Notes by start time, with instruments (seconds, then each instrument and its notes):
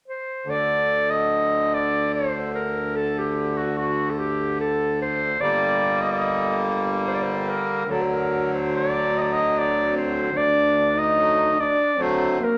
0.08 clarinet C5
0.46 tuba D2, accordion D3
0.50 clarinet D5
1.10 clarinet D#5
1.74 clarinet D5
2.14 clarinet C5
2.55 clarinet A#4
2.96 clarinet A4
3.18 clarinet G4
3.58 clarinet F#4
3.79 clarinet F#4
4.11 clarinet A4
4.19 clarinet G4
4.60 clarinet A4
5.02 clarinet C5
5.40 tuba G1, accordion D3 G3 A#3, clarinet D5
6.02 clarinet D#5
6.11 clarinet D5
6.18 clarinet D#5
7.08 clarinet C5
7.15 clarinet D5
7.23 clarinet C5
7.49 clarinet A#4
7.86 tuba D2, accordion D3 F#3
7.90 clarinet A4
8.01 clarinet C5
8.12 clarinet A#4
8.53 clarinet C5
8.76 clarinet D5
9.18 clarinet D5 D#5
9.33 clarinet D#5
9.58 clarinet D5
9.93 trombone C4
9.97 clarinet C5
10.32 tuba D2, trombone D4
10.37 clarinet D5
10.94 trombone D#4, clarinet D#5
11.15 accordion F#3 A3
11.56 trombone D4
11.60 clarinet D5
11.97 accordion D3 F#3 A3, trombone C4
12.03 clarinet C5
12.39 trombone A#3
12.44 clarinet A#4